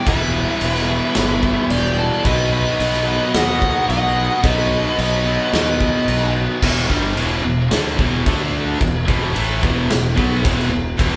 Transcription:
0.05 E1 E2 B2 E3 G3 B3 E4 B4 E5, kick, crash
0.61 E1, crash
0.75 snare
0.87 E2 B2 E3 G3 B3 E4
1.15 G1, snare, crash
1.43 kick
1.70 E1 G4 D5, crash
1.98 A4 D5
2.24 B1 B2 D#3 F#3 B3 D#4 B4 D#5, kick, crash
2.52 B4 D#5
2.79 B1, crash
2.94 snare
3.05 B2 D#3 F#3 B3 D#4
3.34 D#2 D#5 F#5, snare, crash
3.62 kick
3.89 B1 D#5 F#5, crash
4.42 B1 B2 D#3 F#3 B3 D#4 B4 D#5, kick, crash
4.98 B1 B4 D#5, crash
5.24 B2 D#3 F#3 B3 D#4
5.53 D#2 B4 D#5, snare, crash
5.80 kick
6.08 B1, crash
6.62 E1 E2 B2 E3, kick, crash
6.89 G1 G2 D3 G3, kick
7.16 E1 E2 B2 E3, crash
7.44 E1 E2 B2
7.71 D2 D3 A3 D4, snare, crash
7.98 E1 E2 B2 E3, kick
8.26 D2 D3 A3 D4, kick, crash
8.81 E1 E2 B2, kick, crash
9.07 E1 E2 B2 E3, kick
9.34 A1 A2 E3 A3, crash
9.62 E1 E2 B2 E3, kick
9.90 E1 E2 B2, snare, crash
10.16 B1 B2 F#3 B3, kick
10.43 E1 E2 B2 E3, kick, crash
10.59 snare
10.71 E1 E2 B2
10.98 E1 E2 B2 E3, kick, crash

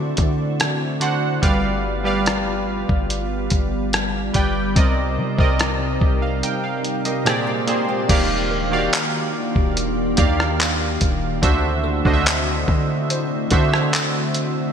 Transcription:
Already playing: D3 A3 C4 D4 E4 F#4 C5 D5 E5
0.17 D3, kick, closed hi-hat
0.60 cross-stick, closed hi-hat
1.00 D3 D4 F#4 C5 F#5, closed hi-hat
1.42 G1 G3 B3 F4 G4 B4 D5 F5, kick, closed hi-hat
2.04 G3 G4 B4 D5 F5
2.26 cross-stick, closed hi-hat
2.89 G1, kick
3.10 closed hi-hat
3.50 G1, kick, closed hi-hat
3.93 cross-stick, closed hi-hat
4.33 G1 G3 G4 B4 D5 G5, kick, closed hi-hat
4.75 C2 C3 C4 D#4 A#4 D5 D#5, kick, closed hi-hat
5.18 G3
5.38 C2 C3 C4 A#4 D5 D#5, kick
5.59 cross-stick, closed hi-hat
6.01 C2 G4 D#5, kick
6.22 F5
6.43 A#4 G5, closed hi-hat
6.64 F5
6.84 closed hi-hat
7.05 F4 G4 A#4 D#5, closed hi-hat
7.25 A#2 G#3 A#3 C4 F4 G4 G#4 C5 D5 G5, cross-stick, closed hi-hat
7.47 C5 F5
7.67 A#2 A#3 C4 G4 G#4 C5 D5, closed hi-hat
7.89 G4 C5
8.08 D#1 D#3 A#3 D4 F4 G4 D5 F5, kick, closed hi-hat, crash
8.51 A#4
8.71 D#3 A#3 F#4 D5 F5
8.79 G4
8.93 clap, closed hi-hat
9.56 D#1, kick
9.77 closed hi-hat
10.17 D#2 D#3 A#3 G4 D5 F5, kick, closed hi-hat
10.40 cross-stick
10.60 clap, closed hi-hat
11.01 D#1, kick, closed hi-hat
11.42 D2 D3 A3 C4 D4 E4 F#4 C5 E5, kick, closed hi-hat
11.84 A4
12.04 D2 D3 D4 F#4 C5 D#5, kick
12.13 E5
12.26 clap, closed hi-hat
12.68 D3, kick
13.10 C5, closed hi-hat
13.50 D3 D4 F#4 A4 C5 E5, kick, closed hi-hat
13.74 cross-stick
13.93 clap, closed hi-hat
14.34 closed hi-hat

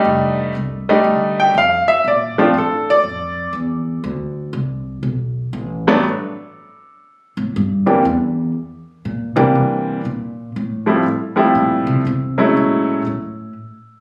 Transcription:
Already playing: G3 A3 D4 D#4
0.04 F1
0.55 C2
0.89 G3 A3 D4 D#4
1.04 D2
1.40 G5
1.54 F2 F5
1.88 E5, muted upright bass stroke
2.04 A#2 D5
2.38 F3 A3 C4 D4 F4, muted upright bass stroke
2.54 A2
2.58 A4
2.90 D5
3.03 F2
3.53 E2
4.04 D2
4.53 C2
5.03 B1
5.53 A1
5.87 G2 F#3 A3 B3 D4
7.37 A2
7.56 G2
7.86 F#2 E3 G3 A#3 C4 D4
8.05 E2
9.05 A#2
9.36 C3 E3 G3 A#3 C4 D4
9.55 C3
10.05 A#2
10.56 A2
10.86 F3 G3 A3 C4 E4
11.36 F3 G3 A3 C4 E4
11.55 A#2
11.87 C3
12.07 C3
12.38 F#3 G#3 A3 C#4 E4
12.57 A#2
13.06 A2

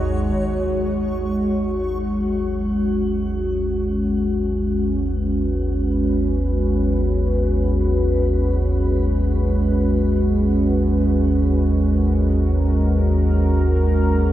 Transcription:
Already playing: G#1 D#2 G#3 D#4 F#4 C#5
0.36 G#1 D#2
1.84 C#4
3.71 B4
11.46 A#4

